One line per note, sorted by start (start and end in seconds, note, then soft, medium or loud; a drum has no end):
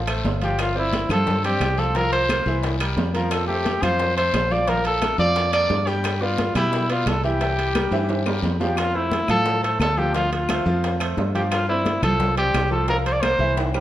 0.00 0.21 A1 medium
0.07 0.35 A3 medium
0.07 0.36 A4 medium
0.07 0.36 C5 medium
0.07 high conga soft
0.07 high timbale loud
0.07 claves medium
0.24 1.04 G1 medium
0.24 high bongo soft
0.24 low bongo medium
0.24 high conga medium
0.24 low timbale medium
0.24 short guiro medium
0.41 0.70 F3 medium
0.41 0.70 F4 medium
0.41 0.59 G4 medium
0.41 0.70 F5 medium
0.41 high bongo soft
0.41 high conga soft
0.41 high timbale medium
0.41 short guiro medium
0.59 0.76 F4 medium
0.59 high bongo medium
0.59 high conga soft
0.59 high timbale medium
0.59 long guiro medium
0.59 claves medium
0.76 1.04 C4 medium
0.76 1.09 E4 medium
0.76 1.04 C5 medium
0.76 1.04 D5 medium
0.76 high bongo soft
0.76 high conga soft
0.93 high bongo medium
0.93 high conga loud
0.93 high timbale medium
0.93 low timbale medium
0.93 short guiro medium
1.09 1.57 G2 medium
1.09 1.38 F3 loud
1.09 1.38 F4 medium
1.09 1.43 A4 loud
1.09 1.38 F5 medium
1.09 high bongo soft
1.09 high conga soft
1.09 low conga medium
1.09 high timbale medium
1.09 short guiro medium
1.09 claves medium
1.27 high bongo medium
1.27 high conga soft
1.27 low conga medium
1.27 long guiro medium
1.44 1.73 C4 medium
1.44 1.80 G4 medium
1.44 1.73 C5 medium
1.44 1.73 D5 medium
1.44 high conga soft
1.44 high timbale medium
1.60 2.40 C2 medium
1.60 high bongo soft
1.60 low bongo medium
1.60 high conga medium
1.60 high timbale medium
1.60 low timbale medium
1.60 short guiro medium
1.60 claves medium
1.78 1.92 F3 medium
1.78 1.93 F4 medium
1.78 1.98 A4 medium
1.78 1.93 F5 medium
1.78 high bongo soft
1.78 high conga soft
1.78 short guiro medium
1.95 2.24 F3 medium
1.95 2.24 F4 medium
1.95 2.12 A#4 loud
1.95 2.24 F5 medium
1.95 high bongo medium
1.95 high conga soft
1.95 high timbale medium
1.95 long guiro medium
2.12 2.60 C5 loud
2.12 high bongo soft
2.12 high conga soft
2.12 high timbale medium
2.29 2.43 A#3 medium
2.29 2.44 A#4 medium
2.29 2.44 C5 medium
2.29 high bongo medium
2.29 high conga medium
2.29 high timbale medium
2.29 low timbale medium
2.29 short guiro medium
2.29 claves medium
2.46 2.94 C2 loud
2.46 2.75 E3 medium
2.46 2.75 E4 medium
2.46 2.75 E5 medium
2.46 high bongo soft
2.46 high conga soft
2.46 short guiro medium
2.63 high bongo medium
2.63 high conga soft
2.63 high timbale medium
2.63 long guiro medium
2.80 3.09 G3 medium
2.80 3.09 G4 medium
2.80 3.09 A#4 medium
2.80 high conga soft
2.80 high timbale loud
2.80 claves medium
2.97 3.77 F2 medium
2.97 high bongo soft
2.97 low bongo medium
2.97 high conga medium
2.97 low timbale medium
2.97 short guiro medium
3.14 3.43 F3 medium
3.14 3.43 F4 medium
3.14 3.33 A#4 medium
3.14 3.43 F5 medium
3.14 high bongo soft
3.14 high conga soft
3.14 high timbale medium
3.14 short guiro medium
3.31 3.47 A4 medium
3.31 high bongo medium
3.31 high conga soft
3.31 high timbale medium
3.31 long guiro medium
3.31 claves medium
3.48 3.77 A3 medium
3.48 3.84 G4 medium
3.48 3.77 A4 medium
3.48 3.77 C5 medium
3.48 high bongo soft
3.48 high conga soft
3.65 high bongo medium
3.65 high conga medium
3.65 high timbale medium
3.65 low timbale medium
3.65 short guiro medium
3.82 4.30 F2 loud
3.82 4.11 F3 medium
3.82 4.11 F4 loud
3.82 4.17 C5 loud
3.82 4.11 F5 loud
3.82 high bongo soft
3.82 high conga soft
3.82 low conga medium
3.82 high timbale medium
3.82 short guiro medium
3.82 claves medium
3.99 high bongo medium
3.99 high conga soft
3.99 long guiro medium
4.16 4.45 A3 medium
4.16 4.45 A4 medium
4.16 4.45 C5 medium
4.16 4.53 C5 medium
4.16 high conga soft
4.16 high timbale medium
4.33 5.13 A#1 medium
4.33 high bongo soft
4.33 low bongo medium
4.33 high conga medium
4.33 high timbale medium
4.33 low timbale medium
4.33 short guiro medium
4.33 claves medium
4.51 4.65 F3 medium
4.51 4.65 F4 medium
4.51 4.70 D5 loud
4.51 4.65 F5 medium
4.51 high bongo soft
4.51 high conga soft
4.51 short guiro medium
4.67 4.96 F3 medium
4.67 4.96 F4 medium
4.67 4.86 A#4 loud
4.67 4.96 F5 medium
4.67 high bongo medium
4.67 high conga soft
4.67 high timbale medium
4.67 long guiro medium
4.85 5.18 A4 loud
4.85 high bongo soft
4.85 high conga soft
4.85 high timbale medium
5.01 5.16 A3 medium
5.01 5.16 A4 medium
5.01 5.16 A#4 medium
5.01 high bongo medium
5.01 high conga loud
5.01 high timbale medium
5.01 low timbale medium
5.01 short guiro medium
5.01 claves medium
5.18 5.66 F2 medium
5.18 5.47 F3 medium
5.18 5.47 F4 loud
5.18 5.51 D5 loud
5.18 5.47 F5 medium
5.18 high bongo soft
5.18 high conga soft
5.18 short guiro medium
5.36 high bongo medium
5.36 high conga soft
5.36 high timbale medium
5.36 long guiro medium
5.53 5.81 A#3 medium
5.53 5.81 A4 medium
5.53 5.81 A#4 medium
5.53 5.89 D5 loud
5.53 high conga soft
5.53 high timbale loud
5.53 claves medium
5.70 6.50 G2 medium
5.70 high bongo soft
5.70 low bongo medium
5.70 high conga medium
5.70 low timbale medium
5.70 short guiro medium
5.87 6.15 G3 medium
5.87 6.23 G4 medium
5.87 6.16 G4 medium
5.87 6.16 G5 medium
5.87 high bongo soft
5.87 high conga soft
5.87 high timbale medium
5.87 short guiro medium
6.04 high bongo medium
6.04 high conga soft
6.04 high timbale medium
6.04 long guiro medium
6.04 claves medium
6.21 6.50 B3 medium
6.21 6.56 F4 medium
6.21 6.50 B4 medium
6.21 6.50 D5 medium
6.21 high bongo soft
6.21 high conga soft
6.38 high bongo medium
6.38 high conga loud
6.38 high timbale medium
6.38 low timbale medium
6.38 short guiro medium
6.55 7.03 B2 loud
6.55 6.84 G3 medium
6.55 6.88 E4 medium
6.55 6.84 G4 loud
6.55 6.84 G5 medium
6.55 high bongo soft
6.55 high conga soft
6.55 low conga medium
6.55 high timbale medium
6.55 short guiro medium
6.55 claves medium
6.72 high bongo medium
6.72 high conga soft
6.72 long guiro medium
6.90 7.18 B3 medium
6.90 7.10 F4 medium
6.90 7.18 B4 medium
6.90 7.18 D5 medium
6.90 high conga soft
6.90 high timbale medium
7.06 7.86 C2 medium
7.06 7.25 A4 medium
7.06 high bongo soft
7.06 low bongo medium
7.06 high conga medium
7.06 high timbale medium
7.06 low timbale medium
7.06 short guiro medium
7.06 claves medium
7.24 7.38 E3 medium
7.24 7.38 E4 medium
7.24 8.40 G4 medium
7.24 7.38 E5 medium
7.24 high bongo soft
7.24 high conga soft
7.24 short guiro medium
7.41 7.69 E3 medium
7.41 7.69 E4 medium
7.41 7.69 E5 medium
7.41 high bongo medium
7.41 high conga soft
7.41 high timbale medium
7.41 long guiro medium
7.58 high bongo soft
7.58 high conga soft
7.58 high timbale medium
7.75 7.89 G3 medium
7.75 7.90 G4 medium
7.75 7.89 A#4 medium
7.75 high bongo medium
7.75 high conga loud
7.75 high timbale medium
7.75 low timbale medium
7.75 short guiro medium
7.75 claves medium
7.91 8.39 G2 loud
7.91 8.20 E3 loud
7.91 8.20 E4 medium
7.91 8.21 E5 medium
7.91 high bongo loud
7.91 high conga soft
7.91 high timbale medium
7.91 short guiro medium
8.09 low bongo medium
8.09 high conga soft
8.09 high timbale medium
8.09 long guiro medium
8.26 8.54 G3 medium
8.26 8.54 G4 medium
8.26 8.55 A#4 medium
8.26 high bongo loud
8.26 high conga soft
8.26 low timbale loud
8.26 claves medium
8.42 9.23 F2 medium
8.42 low bongo medium
8.42 high conga medium
8.42 low timbale medium
8.42 short guiro medium
8.60 8.74 F3 medium
8.60 8.74 F4 medium
8.60 8.79 G4 medium
8.60 8.75 F5 medium
8.60 low bongo medium
8.60 high conga soft
8.60 low timbale medium
8.60 short guiro medium
8.77 8.97 F4 medium
8.77 high bongo medium
8.77 high conga soft
8.77 high timbale loud
8.77 claves medium
8.94 9.22 A3 medium
8.94 9.29 E4 medium
8.94 9.23 A4 medium
8.94 9.23 C5 medium
8.94 high bongo soft
8.94 high conga soft
9.12 high bongo medium
9.12 high conga medium
9.12 high timbale medium
9.12 low timbale medium
9.28 9.76 A2 loud
9.28 9.57 F3 medium
9.28 9.57 F4 loud
9.28 9.61 A4 loud
9.28 9.57 F5 medium
9.28 high bongo soft
9.28 high conga soft
9.28 low conga medium
9.28 high timbale medium
9.28 claves medium
9.46 high bongo medium
9.46 high conga soft
9.63 9.91 A3 medium
9.63 9.91 A4 medium
9.63 9.80 A4 medium
9.63 9.91 C5 medium
9.63 high conga soft
9.63 high timbale medium
9.80 10.60 D2 medium
9.80 10.00 A4 loud
9.80 high bongo soft
9.80 low bongo medium
9.80 high conga medium
9.80 high timbale medium
9.80 low timbale medium
9.80 claves medium
9.97 10.11 F3 medium
9.97 10.11 F4 medium
9.97 10.14 G4 medium
9.97 10.12 F5 medium
9.97 high bongo soft
9.97 high conga soft
10.14 10.43 F3 medium
10.14 10.43 F4 medium
10.14 10.31 F4 medium
10.14 10.43 F5 medium
10.14 high bongo medium
10.14 high conga soft
10.14 high timbale medium
10.32 10.80 F4 medium
10.32 high bongo soft
10.32 high conga soft
10.32 high timbale medium
10.49 10.63 A3 medium
10.49 10.63 A4 medium
10.49 10.63 C5 medium
10.49 high bongo medium
10.49 high conga loud
10.49 high timbale loud
10.49 low timbale medium
10.49 claves medium
10.66 11.13 F2 medium
10.66 10.94 F3 medium
10.66 10.94 F4 medium
10.66 10.94 F5 loud
10.66 high bongo soft
10.66 high conga soft
10.83 high bongo medium
10.83 high conga soft
10.83 high timbale medium
11.00 11.28 A3 medium
11.00 11.28 A4 medium
11.00 11.28 C5 medium
11.00 high conga soft
11.00 high timbale loud
11.00 claves medium
11.17 11.97 G2 medium
11.17 high bongo soft
11.17 low bongo medium
11.17 high conga medium
11.17 low timbale medium
11.35 11.63 F3 medium
11.35 11.63 F4 medium
11.35 11.42 G4 medium
11.35 11.63 F5 medium
11.35 high bongo soft
11.35 high conga soft
11.35 high timbale medium
11.52 11.67 F4 medium
11.52 high bongo medium
11.52 high conga soft
11.52 high timbale loud
11.52 claves medium
11.69 11.97 C4 medium
11.69 12.01 E4 medium
11.69 11.97 C5 medium
11.69 11.97 D5 medium
11.69 high bongo soft
11.69 high conga soft
11.85 high bongo medium
11.85 high conga medium
11.85 high timbale medium
11.85 low timbale medium
12.02 12.50 C2 loud
12.02 12.31 F3 loud
12.02 12.31 F4 medium
12.02 12.35 A4 loud
12.02 12.31 F5 medium
12.02 high bongo soft
12.02 high conga soft
12.02 low conga loud
12.02 high timbale medium
12.02 claves medium
12.20 high bongo medium
12.20 high conga soft
12.20 low conga medium
12.37 12.65 C4 medium
12.37 12.69 G4 medium
12.37 12.65 C5 medium
12.37 12.65 D5 medium
12.37 high conga soft
12.37 high timbale medium
12.54 13.34 C2 medium
12.54 high bongo soft
12.54 low bongo medium
12.54 high conga medium
12.54 high timbale medium
12.54 low timbale medium
12.54 claves medium
12.71 12.85 F3 medium
12.71 12.85 F4 medium
12.71 12.88 A4 medium
12.71 12.86 F5 medium
12.71 high bongo soft
12.71 high conga soft
12.88 13.16 F3 medium
12.88 13.17 F4 medium
12.88 12.97 A#4 loud
12.88 13.17 F5 medium
12.88 high bongo medium
12.88 high conga soft
12.88 high timbale medium
13.06 13.14 C5 medium
13.06 high bongo soft
13.06 high conga soft
13.06 high timbale medium
13.13 13.23 D5 medium
13.21 13.37 A#3 medium
13.21 13.37 A#4 medium
13.21 13.58 C5 loud
13.21 13.37 C5 medium
13.21 high bongo medium
13.21 high conga loud
13.21 high timbale medium
13.21 low timbale medium
13.21 claves medium
13.39 13.80 C2 loud
13.39 13.68 E3 medium
13.39 13.68 E4 medium
13.39 13.68 E5 medium
13.39 high bongo soft
13.39 high conga soft
13.57 high bongo medium
13.57 high conga soft
13.57 high timbale medium
13.74 13.80 G3 medium
13.74 13.80 G4 medium
13.74 13.80 A#4 medium
13.74 high conga soft
13.74 high timbale loud
13.74 claves medium